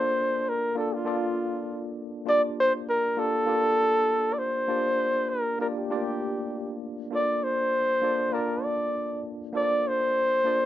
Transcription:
Already playing: A#3 D4 F4 A4 C5 D5
0.49 A#4
0.75 A#3 D4 F4 A4 D5
0.94 F4
1.05 A#3 D4 F4 A4 D5
2.25 A#3 D4 F4 G4 D5
2.60 C5
2.89 A#4
3.17 A#3 D4 F4 G4 A4 D5
3.46 A#3 D4 F4 G4 D5
4.34 D5
4.39 C5
4.68 A#3 D4 F4 G4 D5
5.29 A#4
5.59 A#3 D4 F4 G4 A#4 D5
5.78 G4
5.89 A3 D4 F4 G4 D5
5.96 A#3
7.11 A#3 D4 F4 A4 C#5
7.15 D5
7.20 D5
7.44 C5
8.02 A#3 D4 F4 A4 D5
8.32 A#3 D4 F4 A#4 D5 A5
8.64 D5
9.53 A#3 D4 F4 A4 C5 D5
9.63 D5
9.88 C5
10.44 A#3 D4 F4 A4 D5

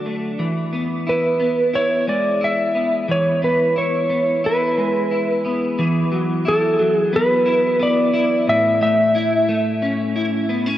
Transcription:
Already playing: D3 F#3 D4
0.06 A3
0.39 E3
0.73 B3
1.07 E4 B4
1.40 B3
1.73 E4 C#5
2.07 G#3 D5
2.41 E4 E5
2.75 B3
3.08 E3 C#5
3.42 B3 B4
3.76 E4 C#5
4.10 B3
4.44 E4 B4
4.77 G#3
5.11 E4
5.45 B3
5.79 E3
6.12 F#3
6.45 E4 A4
6.79 F#3
6.96 G#4
7.13 B3 B4
7.46 E4
7.80 B3 D5
8.14 E4
8.47 A2 E5
8.81 A3 E5
9.15 E4
9.49 A3
9.82 C#4
10.16 E4
10.49 B3
10.66 C#4

